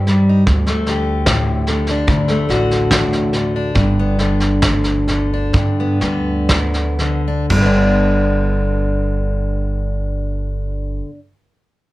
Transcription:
Already playing: steel-string acoustic guitar G2 C4 D#4 G4, upright bass G2
0.07 steel-string acoustic guitar G3, snare
0.29 steel-string acoustic guitar D#4
0.46 upright bass D2, steel-string acoustic guitar D2, kick, snare
0.66 steel-string acoustic guitar A3, snare
0.86 steel-string acoustic guitar D3 G4, snare
1.26 steel-string acoustic guitar A2, kick, snare
1.67 steel-string acoustic guitar D3, snare
1.87 steel-string acoustic guitar D4, snare
2.07 steel-string acoustic guitar D2, upright bass D3, kick, snare
2.28 steel-string acoustic guitar A3, snare
2.49 upright bass A1, steel-string acoustic guitar D3 F#4, snare
2.71 snare
2.91 steel-string acoustic guitar A2, kick, snare
3.13 snare
3.33 steel-string acoustic guitar D3, snare
3.56 steel-string acoustic guitar D4
3.75 upright bass G1, steel-string acoustic guitar G2, kick, snare
3.99 steel-string acoustic guitar B3
4.19 steel-string acoustic guitar D3 D4, snare
4.40 snare
4.62 steel-string acoustic guitar D2, kick, snare
4.84 snare
5.08 steel-string acoustic guitar D3, snare
5.34 steel-string acoustic guitar D4
5.53 upright bass G2, steel-string acoustic guitar G2, kick, snare
5.80 steel-string acoustic guitar B3
6.01 upright bass D2, steel-string acoustic guitar D3 B3, snare
6.49 steel-string acoustic guitar D2, kick, snare
6.74 snare
6.99 steel-string acoustic guitar D3, snare
7.28 steel-string acoustic guitar D4
7.50 upright bass G1, steel-string acoustic guitar G2, kick, crash
7.56 steel-string acoustic guitar D3
7.62 steel-string acoustic guitar B3
7.66 steel-string acoustic guitar D4

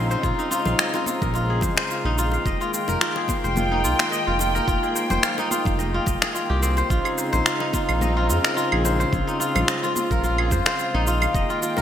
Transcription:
Already playing: analog synth bass A#1, string section C#3 G#3 C4 D#4, kora D#4 F4 G#4 A#4 C5 D#5
0.11 kora C5, shaker
0.23 analog synth bass A#1, kora F4, kick, shaker
0.39 kora D#4, shaker
0.51 kora F4, shaker
0.65 analog synth bass A#1, kora F5, high bongo, low conga, shaker
0.79 kora D#5, finger snap, shaker
0.94 kora F4, high bongo, shaker
1.06 kora F4, high conga, shaker
1.22 analog synth bass A#1, kora A#4, kick, low conga, shaker
1.34 kora F4, high bongo, shaker
1.50 kora G#4
1.61 analog synth bass F2, kora C5, kick, low conga, shaker
1.77 kora C5, finger snap, high bongo
1.91 kora F4, shaker
2.05 analog synth bass A#1, kora D#4
2.18 kora F4, shaker
2.32 kora F5, high bongo, shaker
2.46 analog synth bass F1, string section D#3 A#3 G5, kora D#5, kick, shaker
2.61 kora F4, shaker
2.74 kora F4, shaker
2.88 analog synth bass F1, kora A#4, high bongo, shaker
3.01 kora F4, finger snap, shaker
3.16 kora G#4, high bongo
3.28 kora C5, kick, high conga, shaker
3.44 analog synth bass F1, kora C5, shaker
3.56 kora F4, high conga, low conga, shaker
3.72 kora D#4
3.84 analog synth bass C2, kora F4, shaker
3.99 kora F5, finger snap, shaker
4.12 kora D#5, shaker
4.27 analog synth bass F1, kora F4
4.39 kora F4, high bongo, shaker
4.55 kora A#4, shaker
4.68 analog synth bass F1, kora F4, kick, shaker
4.83 kora G#4, shaker
4.95 kora C5, shaker
5.10 analog synth bass F1, kora C5, high bongo, low conga, shaker
5.23 kora F4, finger snap, shaker
5.38 kora D#4, high bongo, shaker
5.51 kora F4, high conga, shaker
5.65 analog synth bass F1, kora F5, kick, low conga, shaker
5.79 kora D#5, high bongo, shaker
5.94 kora F4
6.06 analog synth bass F1, kora D#5, kick, low conga, shaker
6.22 kora G#4, finger snap, high bongo, shaker
6.35 kora F4, shaker
6.50 analog synth bass C2, kora G4
6.62 kora C4, shaker
6.77 kora C5, high bongo, shaker
6.90 analog synth bass A#1, string section C#3 G#3 C4 D#4, kora F4, kick, shaker
7.05 kora G#4, claves, shaker
7.18 kora C5, shaker
7.33 analog synth bass A#1, kora C5, high bongo, shaker
7.46 kora F4, finger snap, shaker
7.60 kora D#4, high bongo
7.73 kora F4, kick, high conga, shaker
7.89 analog synth bass A#1, kora F5, claves, shaker
8.01 kora D#5, high conga, low conga, shaker
8.17 kora F4
8.29 analog synth bass F2, kora F4, shaker
8.44 kora A#4, finger snap, shaker
8.57 kora F4, shaker
8.72 analog synth bass A#1, kora G#4, claves
8.85 kora C5, high bongo, shaker
9.00 kora C5, shaker
9.13 analog synth bass A#1, kora F4, string section F4, kick, shaker
9.27 kora D#4, shaker
9.40 kora F4, shaker
9.55 analog synth bass A#1, kora F5, high bongo, low conga, claves, shaker
9.68 kora D#5, finger snap, shaker
9.83 kora F4, high bongo, shaker
9.96 kora F4, high conga, shaker
10.11 analog synth bass A#1, kora A#4, kick, low conga, shaker
10.24 kora F4, high bongo, shaker
10.38 kora G#4, claves
10.51 analog synth bass F2, kora C5, kick, low conga, shaker
10.66 kora C5, finger snap, high bongo, shaker
10.79 kora F4, shaker
10.94 analog synth bass A#1, kora D#4
11.07 kora F4, shaker
11.22 kora F5, high bongo, claves, shaker
11.34 analog synth bass F1, string section D#3 G#3 A#3 G5, kora D#5, kick, shaker
11.50 kora F4, shaker
11.62 kora F4, shaker
11.77 analog synth bass F1, kora A#4, high bongo, shaker

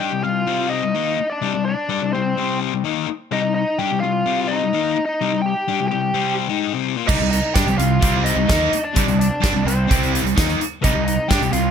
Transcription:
0.00 distorted electric guitar G3 D4, lead electric guitar G4 G5
0.12 distorted electric guitar C3 G3
0.23 distorted electric guitar C3 G3, lead electric guitar F4 F5
0.47 distorted electric guitar C3 G3 C4
0.69 lead electric guitar D#4 D#5
0.83 distorted electric guitar C3 G3
0.95 distorted electric guitar D#3 A#3 D#4
1.19 muted distorted electric guitar stroke
1.30 lead electric guitar D4 D5
1.42 distorted electric guitar C3 G3
1.54 distorted electric guitar C3 G3
1.65 lead electric guitar D4 D5
1.89 distorted electric guitar G3 D4
2.02 distorted electric guitar C3 G3
2.13 distorted electric guitar C3 G3, lead electric guitar C4 C5
2.37 distorted electric guitar C3 G3 C4
2.74 distorted electric guitar C3 G3
2.84 distorted electric guitar D#3 A#3 D#4
3.08 muted distorted electric guitar stroke
3.31 distorted electric guitar C3 G3, lead electric guitar D#4 D#5
3.42 distorted electric guitar C3 G3
3.54 lead electric guitar D#4 D#5
3.79 distorted electric guitar G3 D4, lead electric guitar G4 G5
3.91 distorted electric guitar C3 G3
4.00 distorted electric guitar C3 G3, lead electric guitar F4 F5
4.26 distorted electric guitar C3 G3 C4
4.48 lead electric guitar D#4 D#5
4.63 distorted electric guitar C3 G3
4.73 distorted electric guitar D#3 A#3 D#4
4.97 muted distorted electric guitar stroke
5.05 lead electric guitar D#4 D#5
5.21 distorted electric guitar C3 G3
5.34 distorted electric guitar C3 G3
5.42 lead electric guitar G5
5.46 lead electric guitar G4
5.68 distorted electric guitar G3 D4
5.80 distorted electric guitar C3 G3
5.88 distorted electric guitar C3 G3, lead electric guitar G4 G5
6.14 distorted electric guitar C3 G3 C4
6.49 distorted electric guitar G#3 D#4 G#4
6.73 distorted electric guitar C3 G3 C4
6.96 distorted electric guitar A#3 F4
7.07 fingered electric bass C2, distorted electric guitar C3 G3, lead electric guitar D#4 D#5, kick, crash
7.20 fingered electric bass C2, distorted electric guitar C3 G3
7.31 lead electric guitar D#4 D#5, closed hi-hat
7.54 fingered electric bass G2, distorted electric guitar G3 D4, lead electric guitar G4 G5, kick, snare, closed hi-hat
7.66 fingered electric bass C2, distorted electric guitar C3 G3, closed hi-hat
7.78 fingered electric bass C2, distorted electric guitar C3 G3, lead electric guitar F4 F5, closed hi-hat
8.01 fingered electric bass C2, distorted electric guitar C3 G3 C4, kick, closed hi-hat
8.24 lead electric guitar D#4 D#5, closed hi-hat
8.36 fingered electric bass C2, distorted electric guitar C3 G3
8.48 fingered electric bass D#2, distorted electric guitar D#3 A#3 D#4, kick, snare, closed hi-hat
8.71 muted distorted electric guitar stroke, muted fingered electric bass stroke, closed hi-hat
8.84 lead electric guitar D4 D5
8.95 fingered electric bass C2, distorted electric guitar C3 G3, kick, closed hi-hat
9.06 fingered electric bass C2, distorted electric guitar C3 G3, closed hi-hat
9.19 lead electric guitar D4 D5, closed hi-hat
9.40 fingered electric bass G2, distorted electric guitar G3 D4, kick, snare, closed hi-hat
9.52 fingered electric bass C2, distorted electric guitar C3 G3
9.64 fingered electric bass C2, distorted electric guitar C3 G3, lead electric guitar C4 C5
9.68 closed hi-hat
9.87 fingered electric bass C2, distorted electric guitar C3 G3 C4, kick, closed hi-hat
10.03 closed hi-hat
10.15 closed hi-hat
10.24 fingered electric bass C2, distorted electric guitar C3 G3, closed hi-hat
10.36 fingered electric bass D#2, distorted electric guitar D#3 A#3 D#4, kick, snare, closed hi-hat
10.50 closed hi-hat
10.59 muted fingered electric bass stroke, muted distorted electric guitar stroke, closed hi-hat
10.82 fingered electric bass C2, distorted electric guitar C3 G3, lead electric guitar D#4 D#5, kick, closed hi-hat
10.95 fingered electric bass C2, distorted electric guitar C3 G3
11.05 lead electric guitar D#4 D#5, closed hi-hat
11.28 fingered electric bass G2, distorted electric guitar G3 D4, lead electric guitar G4 G5, kick, snare, closed hi-hat
11.41 fingered electric bass C2, distorted electric guitar C3 G3, closed hi-hat
11.53 fingered electric bass C2, distorted electric guitar C3 G3, lead electric guitar F4 F5, closed hi-hat

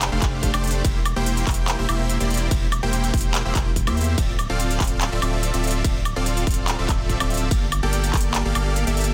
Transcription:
0.01 clap, closed hi-hat, ride
0.12 sub bass F1, supersaw synth A3 D4 G4 C5 F5
0.22 sub bass F1, kick, clap, closed hi-hat
0.43 kick, closed hi-hat
0.54 sub bass F1, supersaw synth A3 D4 G4 C5 D5, closed hi-hat, high woodblock
0.64 closed hi-hat
0.67 closed hi-hat
0.71 closed hi-hat
0.85 sub bass E1, kick, closed hi-hat, ride
1.05 closed hi-hat, high woodblock
1.16 sub bass E1, supersaw synth A#3 E4 G4 C5 G5
1.26 closed hi-hat
1.37 closed hi-hat
1.47 sub bass E1, kick, clap, closed hi-hat
1.51 closed hi-hat
1.54 closed hi-hat
1.68 clap, closed hi-hat, ride
1.79 sub bass E1, supersaw synth A#3 E4 G4 C5 E5
1.89 sub bass E1, supersaw synth A#3 E4 G4 C5 E5, closed hi-hat, high woodblock
2.10 closed hi-hat
2.20 sub bass E1, supersaw synth A#3 E4 G4 C5 D5, closed hi-hat
2.30 closed hi-hat
2.34 closed hi-hat
2.37 closed hi-hat
2.51 sub bass E1, supersaw synth A#3 G4, kick, closed hi-hat, ride
2.72 closed hi-hat, high woodblock
2.83 sub bass E1, supersaw synth A#3 E4 G4 C5 G5
2.93 closed hi-hat
3.04 closed hi-hat
3.14 sub bass E1, supersaw synth A#3 E4 G4 C5, kick, closed hi-hat
3.17 closed hi-hat
3.21 closed hi-hat
3.35 clap, closed hi-hat, ride
3.45 sub bass E1, supersaw synth A#3 E4 G4 C5 E5
3.55 sub bass E1, supersaw synth A#3 E4 G4 C5 G5, kick, clap, closed hi-hat
3.76 kick, closed hi-hat
3.87 sub bass E2, supersaw synth A#3 E4 G4 C5 E5, closed hi-hat, high woodblock
3.97 closed hi-hat
4.01 closed hi-hat
4.04 closed hi-hat
4.18 sub bass D1, supersaw synth C4 F4 A4 D5 E5, kick, closed hi-hat, ride
4.39 closed hi-hat, high woodblock
4.50 sub bass D1, supersaw synth C4 F4 A4 D5 F5
4.60 closed hi-hat
4.70 closed hi-hat
4.80 sub bass D1, supersaw synth C4 F4 A4 D5 F5, kick, clap, closed hi-hat
4.84 closed hi-hat
4.87 closed hi-hat
5.01 clap, closed hi-hat, ride
5.12 sub bass D1, supersaw synth C4 F4 A4 D5 E5
5.22 sub bass D1, supersaw synth C4 F4 A4 D5 E5, closed hi-hat, high woodblock
5.43 closed hi-hat
5.54 sub bass D1, supersaw synth C4 F4 A4 D5 E5, closed hi-hat
5.64 closed hi-hat
5.67 closed hi-hat
5.71 closed hi-hat
5.84 sub bass D1, supersaw synth C4 F4 A4 E5, kick, closed hi-hat, ride
6.05 closed hi-hat, high woodblock
6.16 sub bass D1, supersaw synth C4 F4 A4 D5 F5
6.26 closed hi-hat
6.37 closed hi-hat
6.47 sub bass D1, supersaw synth C4 A4, kick, closed hi-hat
6.51 closed hi-hat
6.54 closed hi-hat
6.68 clap, closed hi-hat, ride
6.79 sub bass D1, supersaw synth C4 F4 A4 D5 E5
6.89 sub bass D1, supersaw synth C4 F4 A4 D5 E5, kick, clap, closed hi-hat
7.10 kick, closed hi-hat
7.20 sub bass D1, supersaw synth C4 F4 A4 D5 E5, closed hi-hat, high woodblock
7.30 closed hi-hat
7.34 closed hi-hat
7.37 closed hi-hat
7.51 sub bass G1, supersaw synth A#3 G4 F5, kick, closed hi-hat, ride
7.72 closed hi-hat, high woodblock
7.83 sub bass G1, supersaw synth A#3 G4 A4 D5 G5
7.93 closed hi-hat
8.04 closed hi-hat
8.14 sub bass G1, supersaw synth A#3 G4 D5 G5, kick, clap, closed hi-hat
8.17 closed hi-hat
8.21 closed hi-hat
8.34 clap, closed hi-hat, ride
8.45 sub bass G1, supersaw synth A#3 G4 A4 D5 F5
8.55 sub bass G1, supersaw synth A#3 G4 A4 D5 F5, closed hi-hat, high woodblock
8.76 closed hi-hat
8.87 sub bass G1, supersaw synth A#3 G4 A4 D5 E5, closed hi-hat
8.97 closed hi-hat
9.01 closed hi-hat
9.04 closed hi-hat

